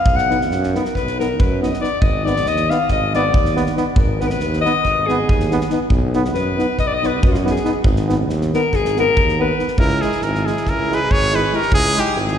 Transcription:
Already playing: F5
0.06 B1, kick
0.16 F#5, snare
0.29 B3 D#4, snare
0.41 snare
0.51 F#2, snare
0.63 snare
0.73 B3 D#4 A#4, snare
0.85 snare
0.95 B1 B4, kick, snare
1.07 snare
1.18 B3 D#4 A#4, snare
1.40 F#2 B4, kick
1.61 B3 D#4 D#5, snare
1.74 snare
1.80 B3 D#4 D5, snare
2.01 G#1 D#5, kick
2.24 B3 D#4 D5, snare
2.36 snare
2.46 D#2 D#5, snare
2.56 snare
2.69 B3 D#4 F5, snare
2.88 G#1 D#5, kick, snare
3.14 B3 D#4 D5, snare
3.34 D#2, kick
3.45 snare
3.55 B3 D#4, snare
3.66 snare
3.76 B3 D#4, snare
3.96 G#1 A#4, kick
4.20 B3 D#4 B4, snare
4.28 A#4 B4, snare
4.40 D#2, snare
4.53 snare
4.61 B3 D#4 D#5
4.65 snare
4.85 G#1, kick, snare
5.07 B3 D#4 G#4, snare
5.29 D#2, kick
5.40 snare
5.50 B3 D#4, snare
5.61 snare
5.70 B3 D#4, snare
5.90 B1, kick
6.13 B3 D#4, snare
6.25 snare
6.34 F#2 B4, snare
6.58 B3 D#4, snare
6.78 B1 D#5, kick, snare
6.87 D5
6.94 D#5
7.02 B3 D#4, snare
7.06 B4
7.23 F#2 F#4, kick
7.32 F4, snare
7.38 F#4
7.44 B3 D#4, snare
7.50 G#4
7.56 snare
7.64 B3 D#4, snare
7.84 G#1, kick
7.96 snare
8.08 B3 D#4, snare
8.28 D#2, snare
8.41 snare
8.53 B3 D#4 A#4, snare
8.73 G#1 G#4, kick, snare
8.85 snare
8.96 B3 D#4 A#4, snare
9.16 D#2, kick
9.28 snare
9.39 B3 D#4 B4
9.58 B3 D#4, snare
9.68 snare
9.78 C#2 E4 A#4, kick
9.89 snare
10.01 G#3 E4 G#4, snare
10.12 snare
10.22 G#1 E4 A#4, snare
10.35 snare
10.46 G#3 E4 G#4, snare
10.57 snare
10.66 C#2 E4 A#4, kick, snare
10.89 G#3 E4, snare
10.94 G#4 B4
11.11 G#1 G#4 C#5, kick
11.32 G#3 E4 G#4 B4, snare
11.51 G#3 E4 G4, snare
11.55 A#4
11.62 snare
11.72 C#2 E4 G#4, kick
11.85 snare
11.94 G#3 E4, snare
11.99 D#4 G4
12.07 snare
12.16 G#1 E4 G#4, snare
12.27 snare

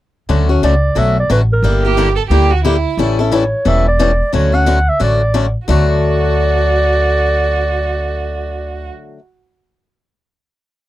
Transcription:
0.29 D2 D3 F#3 A3 C#4 F#4
0.49 A3 C#4 F#4
0.62 C#2 D3 F#3 A3 C#4 F#4 D5
0.95 B1 D3 F#3 A3 C#4 F#4 E5
1.20 D5
1.30 A1 D3 F#3 A3 C#4 F#4 B4
1.53 A#4
1.62 G1 D3 G3 A#3 E4 G4
1.82 A#3 E4 G4
1.97 D3 G3 A#3 E4 G4
2.16 A4
2.29 D2 D3 G3 A#3 E4 G4
2.51 F#4
2.65 D3 G3 A#3 E4 G4
2.97 A1 E3 G3 C#4 E4 A4
3.19 C#4 E4 A4
3.31 E3 G3 C#4 E4 A4 C#5
3.65 E1 E3 G3 C#4 E4 A4 E5
3.88 D5
3.99 E3 G3 C#4 E4 A4
4.33 D2 D3 F#3 A3 C#4 F#4 C#5
4.52 A3 C#4 F#4 F#5
4.66 D3 F#3 A3 C#4 F#4
4.89 E5
4.99 A1 D3 F#3 A3 C#4 F#4 D5
5.34 D3 F#3 A3 C#4 F#4
5.68 D2 D3 F#3 A3 F#4 D5

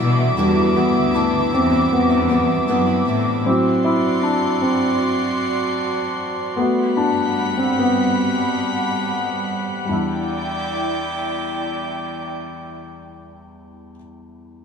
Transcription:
Already playing: G3 A3 D4 E4 F#4 G4 E5 D6
0.00 B2 E3 G3 D4 E4
0.37 E2 B2 E3 G3 D4 E4 F#4
0.76 E3 G3 B3 D4 E4
0.97 D2
1.14 E2 B2 E3 G3 D4 E4
1.52 E2 E3 G3 C4 D4 E4
1.71 E3 G3 D4 E4
1.93 E2 B3
2.09 E3 G3 D4 E4
2.29 E3 G3 B3 D4 E4
2.68 E2 F#2 B2 E3 G3 B3 D4 E4
2.87 E3 G3 D4 E4
3.05 A2 E3 G3 D4 E4
3.45 F#3 C4 E4 F#4 D5 C6
3.84 E4
4.23 D4
4.62 C4
6.57 G3 A3 B3 F#4 F#5 B5
6.97 D4
7.58 C4
7.79 B3
9.85 E2 G3 D4 E4 D5 G5
9.91 E4

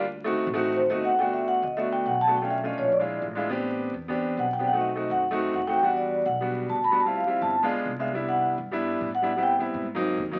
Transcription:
Already playing: D2
0.24 A3 C4 D#4 F#4
0.47 A1
0.53 A3 C4 D#4 F#4
0.77 C5
0.89 G1 A3 C4 D#4 F#4 D#5
1.05 F#5
1.19 A3 B3 D4 F#4 G5
1.33 E5
1.48 F#5
1.62 D2 D#5
1.77 A3 B3 D4 F#4 E5
1.93 G5
2.06 B1 F#5
2.21 A5
2.27 A3 B3 D4 F#4
2.37 G5
2.42 A3 C#4 D4 F4
2.50 E5
2.63 A3 C#4 D4 F4 D#5
2.78 A#1 C#5
2.92 D5
2.99 G#3 D4 E4 F4
3.22 A1
3.35 G#3 D4 E4 F4
3.49 B3 C4 D4 G4
3.94 E2
4.08 B3 C4 D4 G4
4.37 B1 F#5
4.53 G5
4.59 B3 C4 D4 G4
4.67 F#5
4.73 A3 C4 D#4 F#4
4.81 D#5
4.95 A3 C4 D#4 F#4
5.10 F#2 F#5
5.31 A3 C4 D#4 F#4
5.54 E2 F#5
5.67 A3 C4 D#4 F#4 G5
5.83 G3 B3 D4 F#4 F#5
5.97 D5
6.26 B1 F#5
6.41 G3 B3 D4 F#4
6.69 D2 A5
6.84 B5
6.91 G3 B3 D4 F#4
7.00 A5
7.05 G3 C4 E4 F4
7.16 F5
7.26 G3 C4 E4 F4
7.42 G1 A5
7.63 G#3 B3 D4 F4
7.86 C2
7.99 G#3 B3 D4 F4 E5
8.13 G3 B3 D4 E4
8.29 F#5
8.58 G2
8.71 G3 B3 D4 E4
9.01 A2
9.15 F#5
9.22 G3 B3 D4 E4
9.36 G3 B3 C4 E4
9.43 G5
9.58 G3 B3 C4 E4
9.74 G#2
9.95 F#3 A#3 C4 D#4
10.17 D#2
10.31 F#3 A#3 C4 D#4

